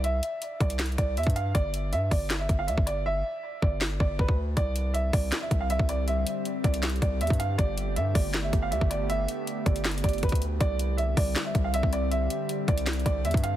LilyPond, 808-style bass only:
\new Staff \with { instrumentName = "808-style bass" } { \clef bass \time 4/4 \key c \major \tempo 4 = 159 c,8 r4 c,4 c,8 e,16 g,8. | g,,4 g,8 g,,4 g,,8 d,16 g,,8.~ | g,,8 r4 g,,4 g,,8 g,,16 d,8. | c,4. c,8 r8 c,8. c,8.~ |
c,8 r4 c,4 c,8 e,16 g,8. | g,,4 g,8 g,,4 g,,8 d,16 g,,8.~ | g,,8 r4 g,,4 g,,8 g,,16 d,8. | c,4. c,8 r8 c,8. c,8.~ |
c,8 r4 c,4 c,8 e,16 g,8. | }